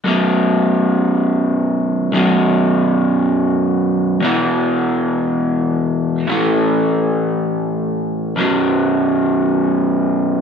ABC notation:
X:1
M:6/8
L:1/8
Q:3/8=58
K:Amix
V:1 name="Overdriven electric guitar" clef=bass
[B,,,F,,B,,]6 | [B,,,F,,B,,]6 | [E,,B,,E,]6 | [A,,E,A,]6 |
[B,,,F,,B,,]6 |]